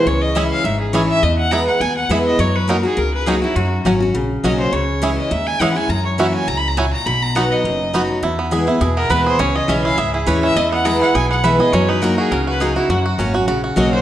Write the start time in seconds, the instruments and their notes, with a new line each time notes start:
0.06 upright bass C#2, steel-string acoustic guitar C#3, fiddle C#5
0.22 fiddle D#5
0.35 steel-string acoustic guitar E3 G#3 C#4 E4, five-string banjo C#4 E4 G#4, fiddle E5
0.51 fiddle F5
0.64 upright bass G#1, steel-string acoustic guitar G#2, fiddle E5
0.80 fiddle G#4
0.93 steel-string acoustic guitar E3 G#3 C#4 E4, five-string banjo C#4 E4 G#4, fiddle C#5
1.09 fiddle E5
1.23 upright bass E2, steel-string acoustic guitar E2, fiddle D#5
1.38 fiddle F#5
1.51 steel-string acoustic guitar E3 G#3 B3 E4, five-string banjo B3 E4 G#4, fiddle A#5
1.67 fiddle F#5
1.80 upright bass D#2, steel-string acoustic guitar B2, fiddle G#5
1.97 fiddle F#5
2.09 upright bass E2, steel-string acoustic guitar E3 G#3 B3 E4, five-string banjo B3 E4 G#4, fiddle E5
2.26 fiddle D#5
2.39 upright bass F#2, steel-string acoustic guitar F#3, fiddle C#5
2.56 fiddle B4
2.68 steel-string acoustic guitar F#3 A#3 D#4 F#4, five-string banjo C#4 D#4 F#4, fiddle A#4
2.83 steel-string acoustic guitar D#4 F#4, fiddle G#4
2.97 upright bass C#2, steel-string acoustic guitar C#3, fiddle A#4
3.14 fiddle B4
3.26 steel-string acoustic guitar F#3 A#3 D#4 F#4, five-string banjo C#4 D#4 F#4, fiddle G#4
3.42 steel-string acoustic guitar D#4 F#4, fiddle E4
3.56 upright bass F#2, steel-string acoustic guitar F#2, fiddle F#4
3.85 upright bass G#1, steel-string acoustic guitar F#3 A#3 C#4 F#4, five-string banjo C#4 F#4
4.00 steel-string acoustic guitar C#4 F#4
4.14 upright bass A#1, steel-string acoustic guitar C#3
4.44 upright bass B1, steel-string acoustic guitar F#3 A#3 C#4 F#4, five-string banjo C#4 F#4, fiddle D#5
4.60 fiddle C5
4.73 upright bass C#2, steel-string acoustic guitar C#3, fiddle C#5
5.02 steel-string acoustic guitar E3 G#3 C#4 E4, five-string banjo C#4 E4 G#4
5.18 fiddle D#5
5.31 upright bass D#2, steel-string acoustic guitar G#2, fiddle E5
5.47 fiddle G#5
5.60 upright bass E2, steel-string acoustic guitar E3 G#3 C#4 E4, five-string banjo C#4 E4 G#4, fiddle F#5
5.76 steel-string acoustic guitar C#4 E4, fiddle G#5
5.89 upright bass F#2, steel-string acoustic guitar F#2, fiddle A#5
6.06 fiddle C#5
6.18 steel-string acoustic guitar E3 A#3 C#4 F#4, five-string banjo C#4 E4 F#4, fiddle E5
6.34 fiddle G#5
6.48 upright bass C#2, steel-string acoustic guitar G#2, fiddle A#5
6.57 fiddle B5
6.68 fiddle A#5
6.77 steel-string acoustic guitar A#2, five-string banjo C#4 E4 F#4, fiddle G#5
6.93 fiddle A#5
7.06 upright bass B1, steel-string acoustic guitar B2, fiddle B5
7.22 fiddle A#5
7.35 steel-string acoustic guitar F#3 B3 D#4 F#4, five-string banjo B3 D#4 F#4, fiddle F#5
7.52 fiddle D#5
7.64 upright bass F#1, steel-string acoustic guitar F#2
7.94 steel-string acoustic guitar F#3 B3 D#4 F#4, five-string banjo B3 D#4 F#4
8.23 upright bass E2, steel-string acoustic guitar E2, five-string banjo E4
8.39 five-string banjo B3
8.51 steel-string acoustic guitar E3 G#3 B3 E4, five-string banjo G#4
8.67 steel-string acoustic guitar B3 E4, five-string banjo E4
8.81 upright bass E2, steel-string acoustic guitar B2, five-string banjo G#4
8.97 five-string banjo B3, fiddle A#4
9.10 upright bass D#2, steel-string acoustic guitar E3 G#3 B3 E4, five-string banjo B4, fiddle B4
9.26 five-string banjo G#4, fiddle C5
9.39 upright bass C#2, steel-string acoustic guitar C#3, five-string banjo C#4, fiddle C#5
9.55 five-string banjo G#4, fiddle D#5
9.68 upright bass B1, steel-string acoustic guitar E3 G#3 C#4 E4, five-string banjo C#4, fiddle E5
9.84 five-string banjo E4, fiddle F5
9.98 upright bass C#2, steel-string acoustic guitar G#2, five-string banjo G#4, fiddle E5
10.14 five-string banjo E4, fiddle G#4
10.26 upright bass D#2, steel-string acoustic guitar E3 G#3 C#4 E4, five-string banjo B4, fiddle C#5
10.42 five-string banjo C#4, fiddle E5
10.56 upright bass E2, steel-string acoustic guitar E2, five-string banjo E4, fiddle D#5
10.72 five-string banjo B3, fiddle F#5
10.85 steel-string acoustic guitar E3 G#3 B3 E4, five-string banjo G#4, fiddle A#5
11.01 five-string banjo E4, fiddle F#5
11.15 upright bass B1, steel-string acoustic guitar B2, five-string banjo G#4, fiddle G#5
11.30 five-string banjo B3, fiddle F#5
11.44 steel-string acoustic guitar E3 G#3 B3 E4, five-string banjo B4, fiddle E5
11.59 steel-string acoustic guitar B3 E4, five-string banjo G#4, fiddle D#5
11.73 upright bass F#2, steel-string acoustic guitar F#3, five-string banjo C#4, fiddle C#5
11.89 five-string banjo D#4, fiddle B4
12.02 steel-string acoustic guitar F#3 A#3 D#4 F#4, five-string banjo F#4, fiddle A#4
12.18 five-string banjo F#4, fiddle G#4
12.31 upright bass C#2, steel-string acoustic guitar C#3, five-string banjo C#4, fiddle A#4
12.47 five-string banjo F#4, fiddle B4
12.60 steel-string acoustic guitar F#3 A#3 D#4 F#4, five-string banjo D#4, fiddle G#4
12.76 steel-string acoustic guitar D#4 F#4, fiddle E4, five-string banjo F#4
12.89 upright bass F#2, steel-string acoustic guitar F#2, fiddle F#4, five-string banjo F#4
13.06 five-string banjo F#4
13.18 upright bass G#1, steel-string acoustic guitar F#3 A#3 C#4 F#4, five-string banjo C#4
13.34 steel-string acoustic guitar C#4 F#4, five-string banjo F#4
13.47 upright bass A#1, steel-string acoustic guitar C#3, five-string banjo F#4
13.64 five-string banjo F#4
13.76 upright bass B1, steel-string acoustic guitar F#3 A#3 C#4 F#4, five-string banjo F#4, fiddle D#5
13.93 five-string banjo F#4, fiddle C5